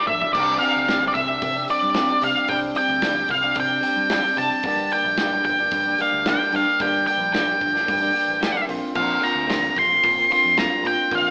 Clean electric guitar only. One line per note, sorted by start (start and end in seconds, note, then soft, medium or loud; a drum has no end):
0.00 0.34 G2 medium
0.00 0.34 A#3 medium
0.00 0.34 G4 medium
0.08 0.34 D4 medium
0.35 0.86 C3 medium
0.35 0.59 G3 medium
0.35 0.60 C4 loud
0.35 0.62 D4 medium
0.35 0.62 G4 medium
0.60 0.87 G3 medium
0.60 0.88 C4 medium
0.60 0.88 D4 medium
0.60 0.90 G4 medium
0.87 1.31 C3 loud
0.87 1.15 G3 medium
0.87 1.03 C4 loud
0.87 1.02 D4 medium
0.87 1.00 G4 loud
1.01 1.16 C4 medium
1.01 1.16 D4 medium
1.01 1.15 G4 medium
1.15 muted clean electric guitar stroke medium
1.27 1.55 C4 medium
1.27 1.55 D4 medium
1.27 1.53 G4 medium
1.54 1.68 C4 medium
1.54 1.69 D4 medium
1.54 1.71 G4 medium
1.67 1.94 G3 medium
1.67 1.94 C4 medium
1.67 1.96 D4 medium
1.67 1.97 G4 medium
1.94 2.35 C3 loud
1.94 2.22 G3 medium
1.94 2.12 C4 medium
1.94 2.11 D4 loud
1.94 2.09 G4 loud
2.10 2.22 C4 medium
2.10 2.24 D4 medium
2.10 2.25 G4 medium
2.22 2.49 G3 medium
2.22 2.49 C4 medium
2.22 2.50 D4 medium
2.22 2.50 G4 medium
2.48 3.01 C3 medium
2.48 2.76 G3 loud
2.48 2.76 C4 loud
2.48 2.78 D4 loud
2.48 2.79 G4 medium
2.76 3.03 G3 medium
2.76 3.03 C4 medium
2.76 3.04 D4 medium
2.76 3.04 G4 medium
3.02 3.43 C3 medium
3.02 3.29 G3 medium
3.02 3.16 C4 medium
3.02 3.16 D4 loud
3.02 3.14 G4 loud
3.15 3.28 C4 medium
3.15 3.29 D4 medium
3.15 3.29 G4 medium
3.29 muted clean electric guitar stroke medium
3.41 3.70 C4 medium
3.41 3.70 D4 medium
3.41 3.68 G4 medium
3.68 3.81 C4 medium
3.68 3.83 D4 medium
3.68 3.83 G4 medium
3.80 4.09 G3 medium
3.80 4.09 C4 medium
3.80 4.10 D4 medium
3.80 4.11 G4 medium
4.09 4.50 C3 medium
4.09 4.36 G3 medium
4.09 4.23 C4 loud
4.09 4.23 D4 loud
4.09 4.21 G4 loud
4.22 4.37 C4 medium
4.22 4.39 D4 medium
4.22 4.39 G4 medium
4.36 4.64 G3 medium
4.36 4.63 C4 medium
4.36 4.66 D4 medium
4.36 4.66 G4 medium
4.64 5.18 G2 medium
4.64 5.18 D3 medium
4.64 4.92 G3 loud
4.64 4.93 A#3 medium
4.64 4.94 D4 loud
4.64 4.94 G4 loud
4.92 5.20 G3 medium
4.92 5.20 A#3 medium
4.92 5.21 D4 medium
4.92 5.21 G4 medium
5.19 5.59 G2 medium
5.19 5.59 D3 medium
5.19 5.34 G3 loud
5.19 5.34 A#3 medium
5.19 5.33 D4 loud
5.19 5.32 G4 loud
5.33 5.45 G3 medium
5.33 5.45 A#3 medium
5.33 5.46 D4 medium
5.33 5.46 G4 medium
5.46 muted clean electric guitar stroke medium
5.59 5.87 G3 medium
5.59 5.87 A#3 medium
5.59 5.87 D4 medium
5.59 5.84 G4 medium
5.86 5.98 G3 medium
5.86 6.00 A#3 medium
5.86 6.01 D4 medium
5.86 6.01 G4 medium
5.99 6.24 G3 medium
5.99 6.26 A#3 medium
5.99 6.26 D4 medium
5.99 6.26 G4 medium
6.24 6.66 G2 loud
6.24 6.66 D3 loud
6.24 6.41 G3 loud
6.24 6.41 A#3 loud
6.24 6.40 D4 loud
6.24 6.38 G4 loud
6.39 6.50 G3 medium
6.39 6.51 A#3 medium
6.39 6.53 D4 medium
6.39 6.52 G4 medium
6.51 6.80 G3 medium
6.51 6.81 A#3 medium
6.51 6.82 D4 medium
6.51 6.81 G4 medium
6.80 7.32 G2 loud
6.80 7.33 D3 medium
6.80 7.06 G3 loud
6.80 7.07 A#3 loud
6.80 7.08 D4 loud
6.80 7.09 G4 loud
7.07 7.34 G3 medium
7.07 7.35 A#3 medium
7.07 7.35 D4 medium
7.07 7.35 G4 medium
7.33 7.74 G2 medium
7.33 7.74 D3 medium
7.33 7.49 G3 medium
7.33 7.48 A#3 loud
7.33 7.47 D4 loud
7.33 7.46 G4 loud
7.47 7.59 G3 medium
7.47 7.60 A#3 medium
7.47 7.60 D4 medium
7.47 7.60 G4 medium
7.60 muted clean electric guitar stroke soft
7.73 8.02 G3 medium
7.73 8.02 A#3 medium
7.73 8.01 D4 medium
7.73 7.99 G4 medium
8.00 8.10 G3 medium
8.00 8.12 A#3 medium
8.00 8.13 D4 medium
8.00 8.13 G4 medium
8.12 8.39 G3 medium
8.12 8.41 A#3 medium
8.12 8.41 D4 medium
8.12 8.41 G4 medium
8.39 8.66 G2 medium
8.39 8.66 D3 loud
8.39 8.55 G3 medium
8.39 8.55 A#3 medium
8.39 8.54 D4 loud
8.39 8.52 G4 loud
8.53 8.67 G3 medium
8.53 8.67 A#3 medium
8.53 8.68 D4 medium
8.53 8.66 G4 medium
8.67 8.93 A#2 medium
8.67 8.94 D3 medium
8.67 8.95 A#3 loud
8.67 8.96 C4 medium
8.67 8.97 F4 medium
8.94 9.46 A#2 medium
8.94 9.19 D3 loud
8.94 9.21 A#3 medium
8.94 9.22 C4 loud
8.94 9.23 F4 loud
9.21 9.46 D3 medium
9.21 9.47 A#3 medium
9.21 9.48 C4 medium
9.21 9.48 F4 medium
9.46 9.93 A#2 medium
9.46 9.75 D3 medium
9.46 9.63 A#3 medium
9.46 9.62 C4 medium
9.46 9.61 F4 loud
9.61 9.76 A#3 medium
9.61 9.75 C4 medium
9.61 9.75 F4 medium
9.76 muted clean electric guitar stroke medium
9.88 10.16 A#3 medium
9.88 10.17 C4 medium
9.88 10.14 F4 medium
10.15 10.28 A#3 medium
10.15 10.30 C4 medium
10.15 10.31 F4 medium
10.29 10.55 D3 medium
10.29 10.56 A#3 medium
10.29 10.57 C4 medium
10.29 10.57 F4 medium
10.55 10.96 A#2 loud
10.55 10.82 D3 medium
10.55 10.71 A#3 loud
10.55 10.71 C4 loud
10.55 10.70 F4 loud
10.70 10.83 A#3 medium
10.70 10.85 C4 medium
10.70 10.85 F4 medium
10.83 11.10 D3 medium
10.83 11.10 A#3 medium
10.83 11.12 C4 medium
10.83 11.12 F4 medium
11.10 11.30 A#2 medium
11.10 11.30 D3 medium
11.10 11.30 A#3 loud
11.10 11.30 C4 medium
11.10 11.30 F4 medium